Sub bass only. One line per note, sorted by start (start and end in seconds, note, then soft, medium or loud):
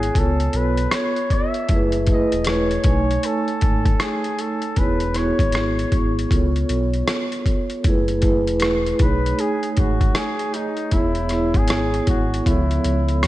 0.00 0.10 G#1 loud
0.15 0.49 C#2 loud
0.54 0.87 B1 loud
1.70 2.24 F#1 loud
2.32 2.78 E1 medium
2.85 3.18 B1 loud
3.63 3.95 G#1 medium
4.77 5.32 E1 loud
5.39 5.85 G#1 loud
5.92 6.26 G#1 medium
6.31 6.64 C#2 loud
6.70 7.03 B1 medium
7.85 8.49 F#1 loud
8.48 8.93 E1 medium
9.00 9.33 B1 loud
9.78 10.11 G#1 medium
10.92 11.56 E1 loud
11.55 12.00 G#1 medium
12.07 12.41 G#1 medium
12.46 12.80 C#2 loud
12.85 13.25 C#2 loud
13.24 13.27 C#3 loud